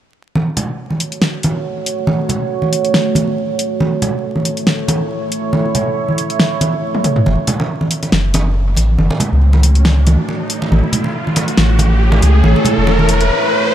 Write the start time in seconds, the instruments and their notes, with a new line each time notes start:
0.35 ambient pad A3 F#4 C#5, high conga
0.57 closed hi-hat, low conga
0.90 high conga
1.00 closed hi-hat
1.12 closed hi-hat
1.22 snare
1.43 closed hi-hat, high conga
1.86 closed hi-hat
2.07 high conga
2.29 closed hi-hat, low conga
2.62 high conga
2.73 closed hi-hat
2.85 closed hi-hat
2.94 snare
3.15 closed hi-hat, high conga
3.59 closed hi-hat
3.80 ambient pad E4 C#5, high conga
4.02 closed hi-hat, low conga
4.36 high conga
4.45 closed hi-hat
4.57 closed hi-hat
4.67 snare
4.88 closed hi-hat, high conga
5.32 closed hi-hat
5.53 high conga
5.75 closed hi-hat, low conga
6.09 high conga
6.18 closed hi-hat
6.30 closed hi-hat
6.40 snare
6.61 closed hi-hat, high conga
6.95 high tom
7.04 closed hi-hat, mid tom
7.16 mid tom
7.26 sub bass F#1, ambient pad A3 F#4 C#5, riser, muted conga, high conga
7.47 closed hi-hat, low conga
7.60 muted conga
7.81 high conga
7.91 closed hi-hat
8.03 closed hi-hat, muted conga
8.12 sub bass F#1, snare
8.34 closed hi-hat, muted conga, high conga
8.76 sub bass A1, closed hi-hat, muted conga
8.98 sub bass F#1, high conga
9.11 muted conga
9.20 closed hi-hat, low conga
9.32 sub bass C#2
9.53 muted conga, high conga
9.63 closed hi-hat
9.75 closed hi-hat
9.85 snare, muted conga
10.07 closed hi-hat, high conga
10.29 muted conga
10.50 closed hi-hat
10.62 muted conga
10.71 sub bass A1, ambient pad E4 C#5, high conga
10.93 closed hi-hat, low conga
11.04 muted conga
11.27 high conga
11.36 closed hi-hat, muted conga
11.48 closed hi-hat
11.58 sub bass A1, snare
11.79 closed hi-hat, muted conga, high conga
12.12 muted conga
12.22 sub bass C#2, closed hi-hat
12.44 sub bass A1, high conga
12.56 muted conga
12.65 closed hi-hat, low conga
12.77 sub bass E1
12.87 muted conga
12.99 high conga
13.09 closed hi-hat
13.21 closed hi-hat